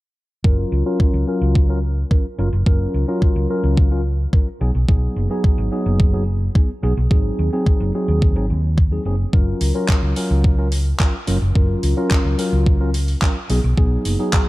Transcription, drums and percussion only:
0.44 kick
1.00 kick
1.55 kick
2.11 kick
2.66 kick
3.22 kick
3.77 kick
4.33 kick
4.89 kick
5.44 kick
6.00 kick
6.55 kick
7.11 kick
7.66 kick
8.22 kick
8.78 kick
9.33 kick
9.61 open hi-hat
9.89 kick, clap
10.16 open hi-hat
10.44 kick
10.72 open hi-hat
11.00 kick, clap
11.27 open hi-hat
11.55 kick
11.83 open hi-hat
12.11 kick, clap
12.39 open hi-hat
12.66 kick
12.94 open hi-hat
13.08 open hi-hat
13.22 kick, clap
13.50 open hi-hat
13.78 kick
14.05 open hi-hat
14.33 kick, clap

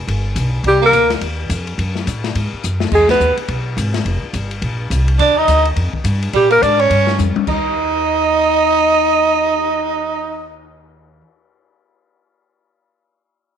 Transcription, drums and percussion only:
0.08 kick, ride
0.36 kick, hi-hat pedal, ride
0.64 kick, ride
0.93 kick, hi-hat pedal, ride
1.10 snare, ride
1.21 kick, ride
1.50 kick, hi-hat pedal, ride
1.67 ride
1.78 kick, ride
1.95 snare
2.07 kick, hi-hat pedal, ride
2.24 snare, ride
2.35 kick, ride
2.63 hi-hat pedal
2.80 snare
2.92 kick, crash
3.09 snare, ride
3.20 hi-hat pedal
3.37 ride
3.48 kick, ride
3.77 kick, hi-hat pedal, ride
3.94 snare, ride
4.05 kick, ride
4.33 kick, hi-hat pedal, ride
4.51 ride
4.62 kick, ride
4.91 kick, hi-hat pedal, ride
5.08 ride
5.19 kick, ride
5.48 kick, hi-hat pedal, ride
5.65 ride
5.76 kick, ride
5.93 kick
6.05 kick, hi-hat pedal, ride
6.22 ride
6.33 kick, ride
6.51 ride
6.62 kick, hi-hat pedal, ride
6.79 ride
6.90 kick, ride
7.07 snare
7.19 hi-hat pedal, high tom
7.36 high tom
7.47 kick, crash
7.64 cymbal swell

